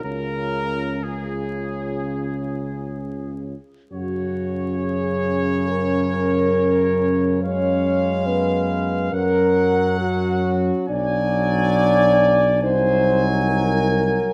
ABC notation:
X:1
M:4/4
L:1/8
Q:1/4=68
K:F#
V:1 name="Trumpet section"
A2 G4- G z | c8 | =f4 ^f4 | g4 g4 |]
V:2 name="French horn section"
E2 E4- E z | F2 G2 A4 | c2 B2 A2 F2 | =d4 ^B2 A2 |]
V:3 name="Euphonium"
C2 C4- C z | C8- | C2 B,2 C4 | =D4 ^D4 |]
V:4 name="Trombone" clef=bass
C,2 C,4- C, z | C,8 | _A,4 F,4 | F,4 F,4 |]
V:5 name="Tuba" clef=bass
C,,6- C,, z | F,,8- | F,,4 F,,4 | B,,,4 ^B,,,4 |]